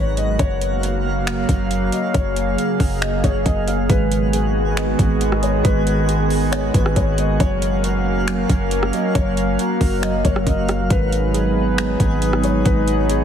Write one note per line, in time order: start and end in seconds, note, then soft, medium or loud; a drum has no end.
0.00 0.38 G#1 loud
0.00 0.36 D#3 medium
0.00 0.35 F#3 medium
0.00 0.36 G#3 medium
0.00 0.36 B3 medium
0.00 2.10 F#4 medium
0.00 0.17 C#5 medium
0.00 0.36 F#5 medium
0.00 0.38 A#5 medium
0.17 0.38 D#5 medium
0.17 closed hi-hat medium
0.39 1.45 F#1 loud
0.39 3.86 C#3 medium
0.39 3.86 F#3 medium
0.39 3.86 A#3 medium
0.39 3.86 F#4 medium
0.39 0.81 C#5 loud
0.39 3.86 F5 medium
0.39 kick loud
0.39 closed hi-hat medium
0.61 closed hi-hat medium
0.83 closed hi-hat medium
1.27 finger snap loud
1.27 closed hi-hat medium
1.49 1.91 F#1 loud
1.49 kick medium
1.49 closed hi-hat medium
1.71 closed hi-hat medium
1.92 2.14 D#5 medium
1.92 closed hi-hat medium
2.14 2.57 F#1 loud
2.14 3.88 G#4 medium
2.14 2.55 C#5 loud
2.14 kick loud
2.14 closed hi-hat medium
2.36 closed hi-hat medium
2.58 closed hi-hat medium
2.80 3.22 F#1 loud
2.80 kick medium
2.80 open hi-hat medium
3.01 3.22 D#5 medium
3.01 finger snap loud
3.01 closed hi-hat medium
3.24 3.45 F#1 loud
3.24 3.45 C#5 medium
3.24 kick loud
3.24 closed hi-hat medium
3.46 3.88 F#1 loud
3.46 3.67 D#5 medium
3.46 kick medium
3.46 closed hi-hat medium
3.68 3.89 F5 medium
3.68 closed hi-hat medium
3.89 4.95 G#1 loud
3.89 7.36 D#3 medium
3.89 7.36 G#3 medium
3.89 4.76 G#3 loud
3.89 7.36 B3 medium
3.89 7.36 F#4 medium
3.89 7.36 G#4 medium
3.89 4.31 B4 loud
3.89 7.36 F#5 medium
3.89 kick loud
3.89 closed hi-hat medium
4.12 closed hi-hat medium
4.33 5.64 G#4 medium
4.33 closed hi-hat medium
4.77 5.42 G#3 medium
4.77 finger snap loud
4.77 closed hi-hat medium
4.99 5.62 G#1 loud
4.99 5.20 B3 medium
4.99 kick loud
4.99 closed hi-hat medium
5.21 6.52 B3 medium
5.21 closed hi-hat medium
5.32 cross-stick medium
5.43 5.63 G#3 medium
5.43 5.64 C#5 medium
5.43 closed hi-hat medium
5.64 6.70 G#1 loud
5.64 6.51 G#3 loud
5.64 6.05 B4 loud
5.64 kick loud
5.64 closed hi-hat medium
5.87 closed hi-hat medium
6.09 7.40 G#4 medium
6.09 closed hi-hat medium
6.30 open hi-hat medium
6.52 7.17 G#3 medium
6.52 6.73 C#5 medium
6.52 finger snap loud
6.52 closed hi-hat medium
6.74 6.95 G#1 loud
6.74 6.95 B3 medium
6.74 6.95 B4 medium
6.74 kick loud
6.74 closed hi-hat medium
6.86 cross-stick medium
6.96 7.38 G#1 loud
6.96 7.40 B3 medium
6.96 7.17 C#5 medium
6.96 kick medium
6.96 closed hi-hat medium
7.18 7.40 G#3 medium
7.18 7.39 D#5 medium
7.18 closed hi-hat medium
7.40 8.46 F#1 loud
7.40 13.24 F#3 medium
7.40 8.26 F#3 loud
7.40 10.87 A#3 medium
7.40 10.87 C#4 medium
7.40 10.87 F#4 medium
7.40 10.87 A#4 medium
7.40 7.81 C#5 loud
7.40 10.87 F5 medium
7.40 kick loud
7.40 closed hi-hat medium
7.62 closed hi-hat medium
7.84 9.15 F#4 medium
7.84 closed hi-hat medium
8.27 8.92 F#3 medium
8.27 finger snap loud
8.27 closed hi-hat medium
8.49 8.92 F#1 loud
8.49 8.70 A#3 medium
8.49 kick loud
8.49 closed hi-hat medium
8.71 10.03 A#3 medium
8.71 closed hi-hat medium
8.83 cross-stick loud
8.93 9.14 F#3 medium
8.93 9.14 D#5 medium
8.93 closed hi-hat medium
9.15 9.57 F#1 loud
9.15 9.56 C#5 loud
9.15 kick loud
9.15 closed hi-hat medium
9.37 closed hi-hat medium
9.59 10.90 F#4 loud
9.59 closed hi-hat medium
9.81 10.23 F#1 loud
9.81 kick medium
9.81 open hi-hat medium
10.02 10.67 F#3 medium
10.02 10.23 D#5 medium
10.02 finger snap loud
10.02 closed hi-hat medium
10.25 10.46 F#1 loud
10.25 10.45 A#3 medium
10.25 10.46 C#5 medium
10.25 kick loud
10.25 closed hi-hat medium
10.36 cross-stick medium
10.47 10.89 F#1 loud
10.47 10.90 A#3 medium
10.47 10.68 D#5 medium
10.47 kick medium
10.47 closed hi-hat medium
10.68 10.90 F#3 medium
10.68 10.89 F5 medium
10.68 cross-stick medium
10.68 closed hi-hat medium
10.90 11.96 G#1 loud
10.90 11.77 G#3 loud
10.90 13.24 B3 medium
10.90 13.24 D#4 medium
10.90 13.24 G#4 medium
10.90 12.64 B4 medium
10.90 11.32 B4 loud
10.90 13.24 F#5 medium
10.90 kick loud
10.90 closed hi-hat medium
11.12 closed hi-hat medium
11.34 12.65 G#4 medium
11.34 closed hi-hat medium
11.78 12.43 G#3 medium
11.78 finger snap loud
11.78 closed hi-hat medium
12.00 12.63 G#1 loud
12.00 12.21 B3 medium
12.00 kick medium
12.00 closed hi-hat medium
12.22 13.24 B3 medium
12.22 closed hi-hat medium
12.33 cross-stick loud
12.44 12.64 G#3 medium
12.44 12.65 C#5 medium
12.44 closed hi-hat medium
12.65 13.24 G#1 loud
12.65 13.24 G#3 loud
12.65 13.06 B4 loud
12.65 13.24 C#5 medium
12.65 kick loud
12.65 closed hi-hat medium
12.88 closed hi-hat medium
13.10 13.24 G#4 medium
13.10 closed hi-hat medium